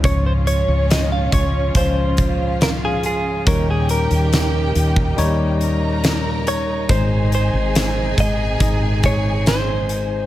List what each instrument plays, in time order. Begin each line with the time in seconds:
Already playing: string section C#3
0.02 fretless electric bass C#2, tine electric piano G#2 F3 C#4 C#5, string section G#3 C#4 F4, violin section C#4 C#5, clean electric guitar C#5, kick, closed hi-hat
0.26 clean electric guitar C5
0.47 clean electric guitar C#5, closed hi-hat
0.68 fretless electric bass C#2
0.91 clean electric guitar D#5, snare, closed hi-hat
1.12 clean electric guitar F5
1.32 fretless electric bass C#2, clean electric guitar C#5, kick, closed hi-hat
1.75 fretless electric bass C#2, tine electric piano F3 C#4 F4, clean electric guitar C5, kick, closed hi-hat
2.17 violin section F4 F5, kick, closed hi-hat
2.61 clean electric guitar A#4, snare, closed hi-hat
2.85 clean electric guitar G#4
3.03 clean electric guitar G#4, closed hi-hat
3.46 fretless electric bass D#2, tine electric piano A#2 G3 D#4 C#5, string section G3 A#3 D#4, violin section G4 G5, clean electric guitar A#4, kick, closed hi-hat
3.71 clean electric guitar G#4
3.89 clean electric guitar A#4, closed hi-hat
4.11 fretless electric bass D#2, closed hi-hat
4.33 snare, closed hi-hat
4.75 fretless electric bass D#2, closed hi-hat
4.96 kick
5.17 fretless electric bass D#2, tine electric piano G3 D#4 C#5, closed hi-hat
5.61 violin section A#4 A#5, closed hi-hat
6.04 snare, closed hi-hat
6.47 clean electric guitar C#5, closed hi-hat
6.89 fretless electric bass G#1, tine electric piano G#2 D#3 G#3 D#4 C5, string section C3 D#3 G#3, violin section G#4 G#5, clean electric guitar C5, kick, closed hi-hat
7.32 clean electric guitar C5, closed hi-hat
7.53 fretless electric bass G#1
7.75 snare, closed hi-hat
8.18 fretless electric bass G#1, clean electric guitar D#5, kick, closed hi-hat
8.60 fretless electric bass G#1, tine electric piano G#3 D#4 D#5, kick, closed hi-hat
9.03 clean electric guitar C#5, kick, closed hi-hat
9.46 clean electric guitar C5, snare, closed hi-hat
9.89 closed hi-hat